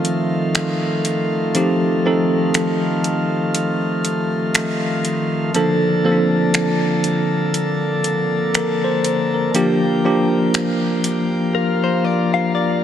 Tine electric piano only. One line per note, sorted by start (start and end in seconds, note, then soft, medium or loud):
0.00 1.55 F3 medium
0.00 1.55 C4 medium
0.00 1.56 D#4 medium
0.00 2.07 A4 medium
1.55 2.02 F3 medium
1.55 2.02 C4 medium
1.55 2.02 D#4 medium
1.55 2.03 G4 medium
2.05 3.93 F3 medium
2.05 3.93 C4 medium
2.05 3.93 D#4 medium
2.05 3.93 A4 medium
5.54 6.02 F3 medium
5.54 6.02 A#3 medium
5.54 6.02 D4 medium
5.54 6.02 A4 medium
6.04 7.92 F3 medium
6.04 7.92 A#3 medium
6.04 6.13 C4 medium
6.04 7.93 A4 medium
6.12 7.96 D4 medium
8.55 8.83 A#4 medium
8.84 9.32 C5 medium
9.34 9.81 A#4 medium
9.54 10.01 F3 medium
9.54 10.02 A#3 medium
9.54 10.02 D4 medium
9.54 10.02 G4 medium
10.04 11.92 F3 medium
10.04 11.93 A#3 medium
10.04 11.93 D4 medium
10.04 11.93 G4 medium